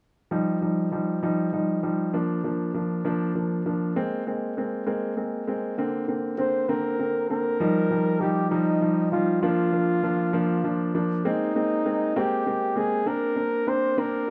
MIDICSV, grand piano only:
0, 0, Header, 1, 2, 480
1, 0, Start_track
1, 0, Key_signature, -3, "major"
1, 0, Tempo, 607903
1, 242, Time_signature, 6, 3, 24, 8
1, 11293, End_track
2, 0, Start_track
2, 0, Title_t, "Grand piano"
2, 0, Program_c, 0, 0
2, 245, Note_on_c, 0, 53, 53
2, 246, Note_on_c, 0, 55, 52
2, 252, Note_on_c, 0, 63, 60
2, 450, Note_off_c, 0, 53, 0
2, 450, Note_off_c, 0, 55, 0
2, 453, Note_off_c, 0, 63, 0
2, 485, Note_on_c, 0, 53, 42
2, 488, Note_on_c, 0, 55, 43
2, 489, Note_on_c, 0, 63, 46
2, 690, Note_off_c, 0, 53, 0
2, 691, Note_off_c, 0, 55, 0
2, 692, Note_off_c, 0, 63, 0
2, 724, Note_on_c, 0, 53, 47
2, 728, Note_on_c, 0, 55, 43
2, 729, Note_on_c, 0, 63, 50
2, 929, Note_off_c, 0, 53, 0
2, 931, Note_off_c, 0, 55, 0
2, 932, Note_off_c, 0, 63, 0
2, 968, Note_on_c, 0, 53, 54
2, 968, Note_on_c, 0, 55, 49
2, 973, Note_on_c, 0, 63, 62
2, 1171, Note_off_c, 0, 53, 0
2, 1171, Note_off_c, 0, 55, 0
2, 1174, Note_off_c, 0, 63, 0
2, 1207, Note_on_c, 0, 53, 41
2, 1209, Note_on_c, 0, 55, 39
2, 1212, Note_on_c, 0, 63, 54
2, 1411, Note_off_c, 0, 53, 0
2, 1412, Note_off_c, 0, 55, 0
2, 1413, Note_off_c, 0, 63, 0
2, 1444, Note_on_c, 0, 53, 46
2, 1446, Note_on_c, 0, 55, 42
2, 1449, Note_on_c, 0, 63, 51
2, 1650, Note_off_c, 0, 53, 0
2, 1651, Note_off_c, 0, 55, 0
2, 1652, Note_off_c, 0, 63, 0
2, 1685, Note_on_c, 0, 53, 55
2, 1688, Note_on_c, 0, 58, 49
2, 1689, Note_on_c, 0, 62, 62
2, 1890, Note_off_c, 0, 53, 0
2, 1891, Note_off_c, 0, 58, 0
2, 1892, Note_off_c, 0, 62, 0
2, 1927, Note_on_c, 0, 53, 45
2, 1928, Note_on_c, 0, 58, 40
2, 1930, Note_on_c, 0, 62, 49
2, 2131, Note_off_c, 0, 53, 0
2, 2132, Note_off_c, 0, 58, 0
2, 2133, Note_off_c, 0, 62, 0
2, 2166, Note_on_c, 0, 53, 51
2, 2167, Note_on_c, 0, 58, 41
2, 2169, Note_on_c, 0, 62, 53
2, 2371, Note_off_c, 0, 53, 0
2, 2371, Note_off_c, 0, 58, 0
2, 2372, Note_off_c, 0, 62, 0
2, 2406, Note_on_c, 0, 53, 61
2, 2407, Note_on_c, 0, 58, 51
2, 2412, Note_on_c, 0, 62, 68
2, 2610, Note_off_c, 0, 53, 0
2, 2611, Note_off_c, 0, 58, 0
2, 2613, Note_off_c, 0, 62, 0
2, 2645, Note_on_c, 0, 53, 45
2, 2646, Note_on_c, 0, 58, 44
2, 2649, Note_on_c, 0, 62, 51
2, 2850, Note_off_c, 0, 53, 0
2, 2851, Note_off_c, 0, 58, 0
2, 2852, Note_off_c, 0, 62, 0
2, 2889, Note_on_c, 0, 53, 49
2, 2889, Note_on_c, 0, 58, 41
2, 2892, Note_on_c, 0, 62, 51
2, 3092, Note_off_c, 0, 53, 0
2, 3092, Note_off_c, 0, 58, 0
2, 3093, Note_off_c, 0, 62, 0
2, 3126, Note_on_c, 0, 56, 60
2, 3128, Note_on_c, 0, 58, 52
2, 3129, Note_on_c, 0, 60, 69
2, 3331, Note_off_c, 0, 56, 0
2, 3332, Note_off_c, 0, 58, 0
2, 3332, Note_off_c, 0, 60, 0
2, 3369, Note_on_c, 0, 56, 50
2, 3373, Note_on_c, 0, 58, 41
2, 3374, Note_on_c, 0, 60, 50
2, 3572, Note_off_c, 0, 56, 0
2, 3574, Note_off_c, 0, 58, 0
2, 3575, Note_off_c, 0, 60, 0
2, 3609, Note_on_c, 0, 56, 49
2, 3612, Note_on_c, 0, 58, 44
2, 3615, Note_on_c, 0, 60, 55
2, 3812, Note_off_c, 0, 56, 0
2, 3814, Note_off_c, 0, 58, 0
2, 3815, Note_off_c, 0, 60, 0
2, 3841, Note_on_c, 0, 56, 59
2, 3842, Note_on_c, 0, 58, 58
2, 3844, Note_on_c, 0, 60, 62
2, 4048, Note_off_c, 0, 56, 0
2, 4048, Note_off_c, 0, 58, 0
2, 4050, Note_off_c, 0, 60, 0
2, 4079, Note_on_c, 0, 56, 52
2, 4080, Note_on_c, 0, 58, 45
2, 4084, Note_on_c, 0, 60, 49
2, 4287, Note_off_c, 0, 56, 0
2, 4288, Note_off_c, 0, 58, 0
2, 4289, Note_off_c, 0, 60, 0
2, 4322, Note_on_c, 0, 56, 53
2, 4326, Note_on_c, 0, 58, 43
2, 4330, Note_on_c, 0, 60, 53
2, 4528, Note_off_c, 0, 56, 0
2, 4530, Note_off_c, 0, 58, 0
2, 4532, Note_off_c, 0, 60, 0
2, 4561, Note_on_c, 0, 50, 62
2, 4563, Note_on_c, 0, 58, 55
2, 4566, Note_on_c, 0, 60, 63
2, 4768, Note_off_c, 0, 50, 0
2, 4769, Note_off_c, 0, 58, 0
2, 4770, Note_off_c, 0, 60, 0
2, 4800, Note_on_c, 0, 50, 45
2, 4801, Note_on_c, 0, 58, 44
2, 4806, Note_on_c, 0, 60, 53
2, 5007, Note_off_c, 0, 50, 0
2, 5008, Note_off_c, 0, 58, 0
2, 5010, Note_off_c, 0, 60, 0
2, 5034, Note_on_c, 0, 50, 50
2, 5037, Note_on_c, 0, 58, 48
2, 5040, Note_on_c, 0, 60, 57
2, 5244, Note_off_c, 0, 50, 0
2, 5246, Note_off_c, 0, 58, 0
2, 5247, Note_off_c, 0, 60, 0
2, 5279, Note_on_c, 0, 50, 61
2, 5281, Note_on_c, 0, 58, 54
2, 5282, Note_on_c, 0, 60, 67
2, 5487, Note_off_c, 0, 50, 0
2, 5488, Note_off_c, 0, 58, 0
2, 5488, Note_off_c, 0, 60, 0
2, 5518, Note_on_c, 0, 50, 49
2, 5520, Note_on_c, 0, 58, 49
2, 5523, Note_on_c, 0, 60, 55
2, 5726, Note_off_c, 0, 50, 0
2, 5727, Note_off_c, 0, 58, 0
2, 5728, Note_off_c, 0, 60, 0
2, 5761, Note_on_c, 0, 50, 50
2, 5764, Note_on_c, 0, 58, 47
2, 5767, Note_on_c, 0, 60, 58
2, 5967, Note_off_c, 0, 50, 0
2, 5969, Note_off_c, 0, 58, 0
2, 5970, Note_off_c, 0, 60, 0
2, 6001, Note_on_c, 0, 53, 65
2, 6003, Note_on_c, 0, 55, 56
2, 6006, Note_on_c, 0, 63, 70
2, 6207, Note_off_c, 0, 53, 0
2, 6208, Note_off_c, 0, 55, 0
2, 6210, Note_off_c, 0, 63, 0
2, 6241, Note_on_c, 0, 53, 55
2, 6247, Note_on_c, 0, 55, 49
2, 6247, Note_on_c, 0, 63, 54
2, 6447, Note_off_c, 0, 53, 0
2, 6450, Note_off_c, 0, 55, 0
2, 6450, Note_off_c, 0, 63, 0
2, 6480, Note_on_c, 0, 53, 56
2, 6483, Note_on_c, 0, 55, 51
2, 6484, Note_on_c, 0, 63, 61
2, 6686, Note_off_c, 0, 53, 0
2, 6688, Note_off_c, 0, 55, 0
2, 6689, Note_off_c, 0, 63, 0
2, 6720, Note_on_c, 0, 53, 68
2, 6724, Note_on_c, 0, 55, 57
2, 6724, Note_on_c, 0, 63, 70
2, 6926, Note_off_c, 0, 53, 0
2, 6928, Note_off_c, 0, 55, 0
2, 6928, Note_off_c, 0, 63, 0
2, 6960, Note_on_c, 0, 53, 58
2, 6963, Note_on_c, 0, 55, 47
2, 6965, Note_on_c, 0, 63, 54
2, 7166, Note_off_c, 0, 53, 0
2, 7168, Note_off_c, 0, 55, 0
2, 7169, Note_off_c, 0, 63, 0
2, 7203, Note_on_c, 0, 53, 56
2, 7205, Note_on_c, 0, 55, 47
2, 7209, Note_on_c, 0, 63, 61
2, 7407, Note_off_c, 0, 53, 0
2, 7409, Note_off_c, 0, 55, 0
2, 7410, Note_off_c, 0, 63, 0
2, 7442, Note_on_c, 0, 53, 65
2, 7444, Note_on_c, 0, 62, 72
2, 7445, Note_on_c, 0, 58, 63
2, 7647, Note_off_c, 0, 53, 0
2, 7648, Note_off_c, 0, 58, 0
2, 7648, Note_off_c, 0, 62, 0
2, 7678, Note_on_c, 0, 53, 54
2, 7681, Note_on_c, 0, 58, 50
2, 7683, Note_on_c, 0, 62, 61
2, 7885, Note_off_c, 0, 53, 0
2, 7886, Note_off_c, 0, 58, 0
2, 7888, Note_off_c, 0, 62, 0
2, 7921, Note_on_c, 0, 53, 60
2, 7923, Note_on_c, 0, 58, 53
2, 7925, Note_on_c, 0, 62, 61
2, 8126, Note_off_c, 0, 53, 0
2, 8127, Note_off_c, 0, 58, 0
2, 8128, Note_off_c, 0, 62, 0
2, 8157, Note_on_c, 0, 53, 69
2, 8160, Note_on_c, 0, 58, 63
2, 8164, Note_on_c, 0, 62, 69
2, 8364, Note_off_c, 0, 53, 0
2, 8366, Note_off_c, 0, 58, 0
2, 8368, Note_off_c, 0, 62, 0
2, 8400, Note_on_c, 0, 53, 57
2, 8404, Note_on_c, 0, 58, 49
2, 8407, Note_on_c, 0, 62, 64
2, 8606, Note_off_c, 0, 53, 0
2, 8607, Note_off_c, 0, 58, 0
2, 8609, Note_off_c, 0, 62, 0
2, 8642, Note_on_c, 0, 53, 56
2, 8643, Note_on_c, 0, 58, 53
2, 8645, Note_on_c, 0, 62, 66
2, 8846, Note_off_c, 0, 53, 0
2, 8847, Note_off_c, 0, 58, 0
2, 8848, Note_off_c, 0, 62, 0
2, 8882, Note_on_c, 0, 56, 66
2, 8884, Note_on_c, 0, 58, 64
2, 8886, Note_on_c, 0, 60, 76
2, 9086, Note_off_c, 0, 56, 0
2, 9087, Note_off_c, 0, 58, 0
2, 9088, Note_off_c, 0, 60, 0
2, 9123, Note_on_c, 0, 56, 53
2, 9125, Note_on_c, 0, 58, 55
2, 9129, Note_on_c, 0, 60, 62
2, 9327, Note_off_c, 0, 56, 0
2, 9328, Note_off_c, 0, 58, 0
2, 9330, Note_off_c, 0, 60, 0
2, 9359, Note_on_c, 0, 56, 62
2, 9361, Note_on_c, 0, 58, 53
2, 9365, Note_on_c, 0, 60, 62
2, 9565, Note_off_c, 0, 56, 0
2, 9566, Note_off_c, 0, 58, 0
2, 9568, Note_off_c, 0, 60, 0
2, 9601, Note_on_c, 0, 56, 69
2, 9603, Note_on_c, 0, 58, 65
2, 9604, Note_on_c, 0, 60, 83
2, 9805, Note_off_c, 0, 56, 0
2, 9807, Note_off_c, 0, 58, 0
2, 9807, Note_off_c, 0, 60, 0
2, 9839, Note_on_c, 0, 56, 59
2, 9843, Note_on_c, 0, 58, 50
2, 9843, Note_on_c, 0, 60, 66
2, 10045, Note_off_c, 0, 56, 0
2, 10046, Note_off_c, 0, 58, 0
2, 10047, Note_off_c, 0, 60, 0
2, 10072, Note_on_c, 0, 56, 57
2, 10076, Note_on_c, 0, 58, 51
2, 10078, Note_on_c, 0, 60, 60
2, 10281, Note_off_c, 0, 56, 0
2, 10283, Note_off_c, 0, 58, 0
2, 10284, Note_off_c, 0, 60, 0
2, 10313, Note_on_c, 0, 58, 66
2, 10314, Note_on_c, 0, 60, 57
2, 10318, Note_on_c, 0, 62, 76
2, 10521, Note_off_c, 0, 58, 0
2, 10522, Note_off_c, 0, 60, 0
2, 10524, Note_off_c, 0, 62, 0
2, 10550, Note_on_c, 0, 58, 48
2, 10551, Note_on_c, 0, 60, 47
2, 10555, Note_on_c, 0, 62, 55
2, 10760, Note_off_c, 0, 58, 0
2, 10761, Note_off_c, 0, 60, 0
2, 10763, Note_off_c, 0, 62, 0
2, 10792, Note_on_c, 0, 58, 56
2, 10794, Note_on_c, 0, 60, 50
2, 10797, Note_on_c, 0, 62, 59
2, 11001, Note_off_c, 0, 58, 0
2, 11002, Note_off_c, 0, 60, 0
2, 11004, Note_off_c, 0, 62, 0
2, 11032, Note_on_c, 0, 58, 62
2, 11037, Note_on_c, 0, 60, 64
2, 11038, Note_on_c, 0, 62, 73
2, 11241, Note_off_c, 0, 58, 0
2, 11244, Note_off_c, 0, 60, 0
2, 11244, Note_off_c, 0, 62, 0
2, 11293, End_track
0, 0, End_of_file